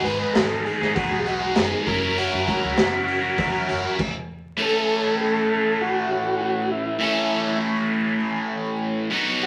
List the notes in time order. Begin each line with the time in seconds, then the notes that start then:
Already playing: G#2 D#3
0.04 G#1 G#3 B3 D#4 G#4 B4, open hi-hat
0.19 G#3 B3 D#4 G#4
0.33 G#1 G#2 D#3 G#3 A4, snare, open hi-hat
0.38 B3 D#4 G#4
0.65 G#4, open hi-hat
0.81 G#2 G#3 B3 D#4 G#4, snare
0.95 G#3 B3 D#4 F#4, kick, open hi-hat
0.99 G#4
1.09 B1 G#3 B3 D#4 G#4
1.19 G#4
1.25 G#3 B3 D#4 F#4 G#4, open hi-hat
1.40 G#3 B3 D#4 G#4
1.55 F#1 G#2 D#3 G#3 B3 D#4 G#4, snare, open hi-hat
1.86 F#1 F#3 C#4 E4 A#4, kick, open hi-hat
2.00 E4 A#4
2.04 C#4
2.15 F#3 C#4 E4 F#4 A#4, open hi-hat
2.33 F#2
2.45 F#3 C#4 E4 A#4, kick, open hi-hat
2.60 C#2 C#4 E4 A#4
2.75 F#1 F#3 C#4 E4 A#4, snare, open hi-hat
3.08 open hi-hat
3.21 C#4 E4 A#4
3.36 F#3 C#4 E4 A#4, kick, open hi-hat
3.51 C#4 E4 A#4
3.66 F#1 F#3 C#4 E4 A#4, open hi-hat
3.82 C#4 E4 A#4
3.99 kick, crash
4.57 A2 E3 A3 C#4 A4
4.62 A4
5.21 A4
5.81 F#4
6.12 F#4
6.42 F#4
6.71 E4
6.99 A2 E3 A3 C#4 A4
9.10 B2 F#3 B3 D#4 F#4
9.43 F#4